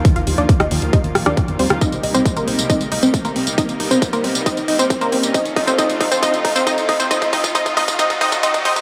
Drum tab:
HH |xxoxxxoxxxoxxxox|xxoxxxoxxxoxxxox|xxoxxxoxxxoxxxox|xxoxxxoxxxoxxxox|
TB |----------------|xx-xxx-xxx-xxx-x|xx-xxx-xxx-xxx-x|xx-xxx-xxx-xxx-x|
SD |-----r----rr---r|----------------|----------------|----------------|
BD |o---o---o---o---|o---o---o---o---|o---o---o---o---|o-o-o-o-o-o-o-o-|

HH |xxoxxxoxxxoxxxox|
TB |xx-xxx-xxx-xxx-x|
SD |----------------|
BD |oooooooooooooooo|